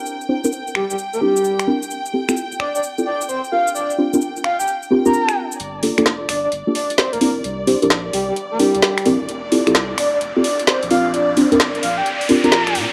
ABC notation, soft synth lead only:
X:1
M:4/4
L:1/16
Q:"Swing 16ths" 1/4=130
K:Gdor
V:1 name="Soft synth lead"
z6 G G z B G4 z2 | z6 d d z2 d z c z f z | d z4 z f g z3 b3 z2 | z6 d d z2 d z c B B z |
z6 G G z B G4 z2 | z6 d d z2 d z c z f z | d z4 z f g z3 b3 z2 |]